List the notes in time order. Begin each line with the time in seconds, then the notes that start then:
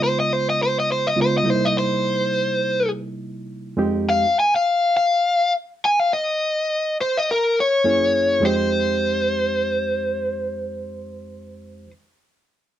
Already playing: C#3 G#3 B3 D#4 F4
0.04 C5
0.20 D#5
0.33 C5
0.50 D#5
0.63 C5
0.80 D#5
0.92 C5
1.07 D#5
1.16 C#3 G#3 B3 D#4 F4
1.22 C5
1.38 D#5
1.44 C3 G3 A#3 D#4 E4
1.50 C5
1.65 D#5
1.79 C5
3.77 F2 G#3 C4 D#4 G4
4.10 F5
4.40 G#5
4.56 F5
4.97 F5
5.85 G#5
6.00 F5
6.13 D#5
7.01 C5
7.17 D#5
7.31 A#4
7.60 C#5
7.84 F#2 A#3 C#4 E4 G#4
8.40 F2 G#3 C4 D#4
8.45 G4 C5